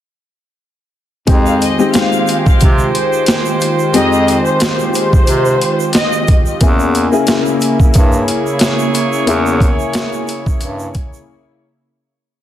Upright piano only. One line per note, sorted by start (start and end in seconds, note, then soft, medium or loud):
1.27 1.75 G#3 loud
1.27 1.75 C4 medium
1.27 1.75 D#4 medium
1.27 1.75 G4 loud
1.78 1.92 G#3 medium
1.78 1.93 C4 medium
1.78 1.93 D#4 medium
1.78 1.94 G4 loud
1.94 3.49 G#3 medium
1.94 3.49 C4 medium
1.94 3.49 D#4 medium
1.94 3.50 G4 loud
3.94 6.41 G#3 medium
3.94 6.41 C4 medium
3.94 6.41 D#4 medium
3.94 6.42 G4 loud
6.61 7.09 A#3 medium
6.61 7.09 C#4 medium
6.61 7.09 E4 medium
6.61 7.09 G#4 loud
7.12 7.25 A#3 medium
7.12 7.26 C#4 medium
7.12 7.26 E4 medium
7.12 7.27 G#4 loud
7.27 8.82 A#3 loud
7.27 8.82 C#4 medium
7.27 8.83 E4 medium
7.27 8.83 G#4 loud
9.27 11.27 A#3 medium
9.27 11.28 C#4 medium
9.27 11.28 E4 medium
9.27 11.28 G#4 loud